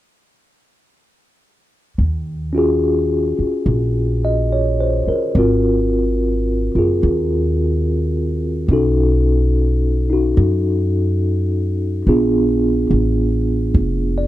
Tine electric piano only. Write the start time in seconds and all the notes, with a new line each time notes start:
2.53 C#4 F4 F#4
2.58 G#4
4.25 D#5
4.53 C#5
4.80 C5
5.09 A#4
5.37 C4 F4 F#4 A#4
6.76 F4 G#4
8.71 C#4 D#4 F#4 A4
10.10 D#4 F#4
12.08 B3 D4 F4 G#4
14.18 D5